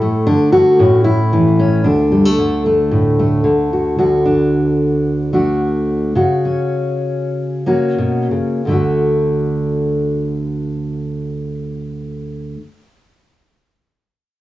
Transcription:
0.00 0.28 A2 medium
0.00 2.11 A3 soft
0.00 0.26 E4 soft
0.27 0.79 D3 medium
0.27 0.52 D4 medium
0.52 1.04 F#4 medium
0.79 1.85 A2 medium
0.79 1.58 C#4 soft
1.04 1.84 E4 loud
1.33 1.87 E3 medium
1.59 1.85 C#4 medium
1.84 3.97 D2 medium
1.84 3.72 D4 medium
2.12 2.25 G3 soft
2.25 2.65 A3 soft
2.38 3.43 D3 soft
2.66 3.18 A3 soft
2.91 3.45 A2 medium
3.19 3.96 A3 soft
3.44 6.15 D3 medium
3.73 3.96 F#4 soft
3.99 6.16 D2 medium
3.99 5.34 F#4 medium
4.25 5.33 D4 soft
5.33 6.12 A3 soft
5.33 6.13 D4 soft
5.33 6.16 F#4 medium
6.15 7.97 C#3 medium
6.15 7.65 F#4 medium
6.45 7.65 C#4 soft
7.66 8.61 A#3 soft
7.66 8.61 C#4 soft
7.66 8.61 F#4 soft
7.98 8.31 B2 medium
8.31 8.65 C#3 soft
8.65 12.54 D2 soft
8.65 12.56 D3 soft
8.65 12.58 A3 soft
8.71 12.60 D4 soft
8.71 12.62 F#4 soft

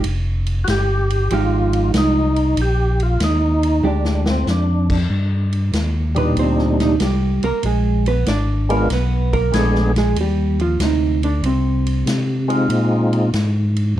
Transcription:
0.04 0.66 F1 medium
0.04 ride medium
0.46 ride soft
0.64 1.29 G1 medium
0.64 0.68 F#4 medium
0.64 snare medium
0.64 hi-hat pedal medium
0.64 ride medium
0.70 1.34 G4 medium
1.10 ride soft
1.30 1.92 G#1 medium
1.30 2.28 F3 medium
1.30 2.29 G#3 medium
1.30 2.29 D#4 medium
1.30 1.91 F4 medium
1.30 2.29 G4 medium
1.30 ride medium
1.73 ride soft
1.93 2.55 C2 medium
1.93 snare medium
1.93 hi-hat pedal soft
1.93 ride medium
1.98 2.61 D#4 medium
2.36 ride soft
2.57 3.18 A#1 medium
2.57 ride medium
2.62 3.03 G4 loud
3.00 3.21 F4 medium
3.00 ride soft
3.20 3.82 D#2 medium
3.20 3.87 D#4 medium
3.20 snare medium
3.20 hi-hat pedal medium
3.20 ride medium
3.63 ride soft
3.83 4.45 D2 medium
3.83 4.22 G#3 medium
3.83 4.22 D4 medium
3.83 4.25 D4 medium
3.83 4.23 G4 medium
4.05 snare medium
4.26 snare medium
4.30 4.47 C4 medium
4.47 5.08 F2 medium
4.47 4.98 D4 medium
4.47 snare medium
4.47 hi-hat pedal medium
4.90 kick medium
4.90 crash medium
5.10 5.71 G2 medium
5.52 ride soft
5.73 6.35 D#2 medium
5.73 snare medium
5.73 hi-hat pedal soft
5.73 ride medium
6.15 6.95 A#2 medium
6.15 6.37 B2 medium
6.15 6.95 G3 medium
6.15 6.96 D4 medium
6.15 6.96 D#4 medium
6.15 6.37 B4 medium
6.15 ride soft
6.37 6.98 D2 medium
6.37 6.80 C4 medium
6.37 6.80 C5 medium
6.37 ride medium
6.59 snare soft
6.80 7.00 C3 soft
6.80 7.00 D#4 medium
6.80 snare soft
6.80 ride soft
7.00 7.40 C2 medium
7.00 7.43 G3 soft
7.00 7.43 G4 medium
7.00 snare medium
7.00 hi-hat pedal medium
7.00 ride medium
7.43 7.53 C2 soft
7.43 7.63 A#3 medium
7.43 7.64 A#4 medium
7.43 ride soft
7.63 8.25 A#1 medium
7.63 8.06 G#3 medium
7.63 8.06 G#4 medium
7.63 ride medium
8.06 8.27 B3 medium
8.06 8.27 B4 medium
8.06 ride soft
8.26 8.88 G#1 medium
8.26 8.70 D4 medium
8.26 8.69 D5 medium
8.26 snare medium
8.26 hi-hat pedal medium
8.26 ride medium
8.69 8.88 G#3 medium
8.69 8.90 A#3 medium
8.69 8.88 B3 medium
8.69 8.89 D4 medium
8.69 8.89 F4 medium
8.69 8.90 A#4 medium
8.69 ride soft
8.90 9.52 B1 medium
8.90 9.33 B3 medium
8.90 9.33 B4 medium
8.90 snare soft
8.90 ride medium
9.33 9.53 A#3 medium
9.33 9.53 A#4 medium
9.33 kick medium
9.33 ride soft
9.52 10.15 A#1 medium
9.52 9.91 G#3 medium
9.52 9.92 B3 medium
9.52 9.92 D4 medium
9.52 9.93 G#4 medium
9.52 snare medium
9.52 hi-hat pedal soft
9.52 ride medium
9.56 9.97 A3 medium
9.56 9.96 A4 medium
9.75 snare soft
9.96 10.17 G#3 medium
9.96 10.17 G#4 medium
9.96 snare soft
9.96 ride soft
10.16 10.78 D#2 medium
10.16 ride medium
10.21 10.61 G3 medium
10.21 10.60 G4 medium
10.59 10.80 F3 medium
10.59 10.81 F4 medium
10.59 ride soft
10.80 11.42 D2 medium
10.80 11.24 C3 medium
10.80 11.24 D#4 medium
10.80 snare medium
10.80 hi-hat pedal soft
10.80 ride medium
11.23 11.44 D3 medium
11.23 11.44 D4 medium
11.23 ride soft
11.43 12.05 C2 medium
11.43 12.68 C3 medium
11.43 12.68 C4 medium
11.43 ride medium
11.86 ride soft
12.06 12.68 C3 medium
12.06 snare medium
12.06 hi-hat pedal soft
12.06 ride medium
12.48 13.29 G#3 medium
12.48 13.29 C4 soft
12.48 13.30 D#4 soft
12.48 13.30 F4 medium
12.48 ride soft
12.69 13.32 A#2 medium
12.69 ride medium
13.13 ride soft
13.33 13.95 G#2 medium
13.33 snare medium
13.33 hi-hat pedal soft
13.33 ride medium
13.76 ride soft
13.96 14.00 G2 medium

